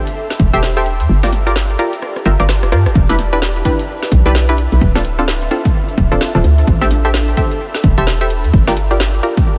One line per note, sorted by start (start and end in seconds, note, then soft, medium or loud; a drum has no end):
0.00 1.85 A4 medium
0.00 1.85 E5 medium
0.00 1.09 B5 medium
0.07 closed hi-hat medium
0.30 snare medium
0.40 0.51 E1 loud
0.40 kick loud
0.40 closed hi-hat loud
0.53 1.02 E1 medium
0.53 0.73 G4 medium
0.53 0.73 A4 medium
0.53 0.73 C5 medium
0.53 0.73 E5 loud
0.53 closed hi-hat medium
0.63 snare loud
0.77 0.88 G4 medium
0.77 0.88 A4 medium
0.77 0.88 C5 medium
0.77 0.88 E5 medium
0.77 closed hi-hat medium
0.86 closed hi-hat loud
1.00 1.07 E2 medium
1.00 closed hi-hat medium
1.09 1.76 G1 loud
1.09 3.71 G4 medium
1.23 1.30 F4 medium
1.23 1.30 G4 medium
1.23 1.30 A#4 medium
1.23 1.30 D5 medium
1.23 snare medium
1.28 3.71 D5 medium
1.33 snare soft
1.33 closed hi-hat loud
1.47 1.53 F4 medium
1.47 1.53 G4 medium
1.47 1.53 A#4 medium
1.47 1.53 D5 medium
1.47 closed hi-hat medium
1.54 3.71 A5 medium
1.54 snare loud
1.70 closed hi-hat soft
1.79 1.95 F4 medium
1.79 1.95 G4 medium
1.79 1.95 A#4 medium
1.79 1.95 D5 medium
1.79 closed hi-hat loud
1.93 closed hi-hat medium
2.02 cross-stick medium
2.16 cross-stick medium
2.16 closed hi-hat soft
2.25 2.37 G1 medium
2.25 2.38 F4 medium
2.25 2.38 G4 medium
2.25 2.38 A#4 medium
2.25 2.38 E5 loud
2.25 closed hi-hat loud
2.40 2.65 G1 medium
2.40 2.46 F4 medium
2.40 2.46 G4 medium
2.40 2.46 A#4 medium
2.40 2.46 D5 medium
2.40 cross-stick medium
2.40 closed hi-hat medium
2.49 cross-stick medium
2.49 snare loud
2.63 2.74 F1 loud
2.63 cross-stick medium
2.63 closed hi-hat medium
2.72 2.88 G2 loud
2.72 2.88 F4 medium
2.72 2.88 G4 medium
2.72 2.88 A#4 medium
2.72 2.88 D5 medium
2.72 cross-stick loud
2.72 closed hi-hat loud
2.86 2.93 G1 medium
2.86 cross-stick medium
2.86 closed hi-hat medium
2.95 3.62 E1 loud
2.95 5.40 E4 medium
2.95 kick loud
3.09 3.16 D4 medium
3.09 3.16 E4 medium
3.09 3.16 G4 medium
3.09 3.16 B4 loud
3.09 snare medium
3.13 9.19 E5 medium
3.19 snare soft
3.19 closed hi-hat loud
3.33 3.39 D4 medium
3.33 3.39 E4 medium
3.33 3.39 G4 medium
3.33 3.39 B4 medium
3.33 5.51 B4 medium
3.33 closed hi-hat medium
3.42 snare loud
3.56 closed hi-hat soft
3.65 3.81 D4 medium
3.65 3.81 E4 medium
3.65 3.81 G4 medium
3.65 3.81 B4 medium
3.65 kick medium
3.65 closed hi-hat loud
3.79 closed hi-hat medium
4.03 snare medium
4.12 4.23 B1 loud
4.12 kick loud
4.12 closed hi-hat loud
4.26 4.67 B1 medium
4.26 4.46 D4 loud
4.26 4.46 E4 medium
4.26 4.46 G4 medium
4.26 4.46 B4 loud
4.26 closed hi-hat medium
4.35 snare loud
4.49 4.60 D4 medium
4.49 4.60 E4 medium
4.49 4.60 G4 medium
4.49 4.60 B4 loud
4.49 closed hi-hat medium
4.58 closed hi-hat loud
4.72 4.79 B1 medium
4.72 closed hi-hat medium
4.81 5.48 D1 loud
4.81 7.43 D4 medium
4.81 kick loud
4.95 5.02 C4 medium
4.95 5.02 D4 medium
4.95 5.02 F4 medium
4.95 5.02 A4 medium
4.95 snare medium
5.05 closed hi-hat loud
5.15 5.25 C4 medium
5.15 5.25 D4 medium
5.15 5.25 F4 medium
5.15 9.29 A4 medium
5.15 5.25 A4 medium
5.15 closed hi-hat medium
5.28 snare loud
5.42 closed hi-hat soft
5.51 5.67 C4 medium
5.51 5.67 D4 medium
5.51 5.67 F4 medium
5.51 5.67 A4 medium
5.51 closed hi-hat loud
5.65 kick loud
5.65 closed hi-hat medium
5.89 closed hi-hat soft
5.98 6.09 D1 loud
5.98 kick loud
5.98 closed hi-hat loud
6.12 6.19 D1 medium
6.12 6.32 C4 loud
6.12 6.32 D4 medium
6.12 6.32 F4 medium
6.12 6.32 A4 loud
6.12 closed hi-hat medium
6.21 snare loud
6.35 6.42 D1 loud
6.35 6.46 C4 medium
6.35 6.46 D4 medium
6.35 6.46 F4 medium
6.35 6.46 A4 medium
6.35 closed hi-hat soft
6.44 6.63 D2 medium
6.44 closed hi-hat loud
6.58 closed hi-hat medium
6.67 7.34 A1 loud
6.67 kick loud
6.81 6.88 G4 medium
6.81 6.88 A4 medium
6.81 6.88 C5 medium
6.81 6.88 E5 medium
6.81 snare medium
6.91 snare soft
6.91 closed hi-hat loud
7.05 7.11 G4 medium
7.05 7.11 A4 medium
7.05 7.11 C5 medium
7.05 7.11 E5 loud
7.05 closed hi-hat medium
7.14 snare loud
7.19 8.54 B5 medium
7.28 closed hi-hat soft
7.37 7.53 G4 medium
7.37 7.53 A4 medium
7.37 7.53 C5 medium
7.37 7.53 E5 medium
7.37 kick medium
7.37 closed hi-hat loud
7.51 closed hi-hat medium
7.75 snare medium
7.84 7.95 E1 loud
7.84 kick loud
7.84 closed hi-hat loud
7.98 8.46 E1 medium
7.98 8.18 G4 loud
7.98 8.18 A4 medium
7.98 8.18 C5 medium
7.98 8.18 E5 loud
7.98 closed hi-hat medium
8.07 snare loud
8.21 8.32 G4 medium
8.21 8.32 A4 medium
8.21 8.32 C5 medium
8.21 8.32 E5 medium
8.21 closed hi-hat medium
8.30 closed hi-hat loud
8.44 8.52 E2 medium
8.44 closed hi-hat medium
8.54 9.20 G1 loud
8.54 9.58 G4 medium
8.54 kick loud
8.67 8.74 F4 medium
8.67 8.74 G4 medium
8.67 8.74 A#4 medium
8.67 8.74 D5 medium
8.67 9.58 D5 medium
8.67 snare medium
8.77 closed hi-hat loud
8.91 8.97 F4 medium
8.91 8.97 G4 medium
8.91 8.97 A#4 medium
8.91 8.97 D5 medium
8.91 closed hi-hat medium
9.00 9.58 A5 medium
9.00 snare loud
9.14 closed hi-hat soft
9.23 9.39 F4 medium
9.23 9.39 G4 medium
9.23 9.39 A#4 medium
9.23 9.39 D5 medium
9.23 closed hi-hat loud
9.37 kick loud
9.37 closed hi-hat medium